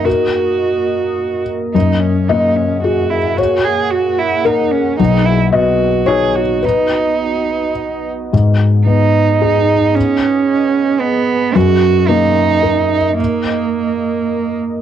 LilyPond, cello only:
\new Staff \with { instrumentName = "Cello" } { \time 3/4 \key gis \minor \tempo 4 = 110 fis'2~ fis'8 r8 | dis'8 cis'8 dis'8 cis'8 fis'8 e'8 | fis'8 gis'8 fis'8 e'8 dis'8 cis'8 | dis'8 e'8 fis'4 gis'8 fis'8 |
dis'2~ dis'8 r8 | r4 dis'2 | cis'2 b4 | fis'4 dis'2 |
ais2~ ais8 r8 | }